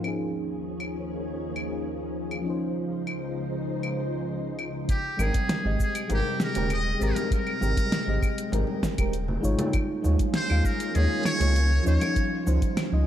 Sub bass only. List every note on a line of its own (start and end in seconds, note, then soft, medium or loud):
5.19 5.31 G#1 medium
5.65 5.76 G#1 medium
6.10 6.22 G#1 loud
6.56 6.95 D#1 medium
7.01 7.13 G#1 medium
7.62 7.73 G#1 medium
8.07 8.18 G#1 medium
8.52 8.64 G#1 loud
8.99 9.38 D#1 medium
9.44 9.55 G#1 medium
10.05 10.16 D#2 medium
10.51 10.61 D#2 medium
10.95 11.07 D#2 loud
11.40 11.80 C#2 medium
11.87 11.98 D#2 medium
12.47 12.58 C#2 medium
12.92 13.03 C#2 medium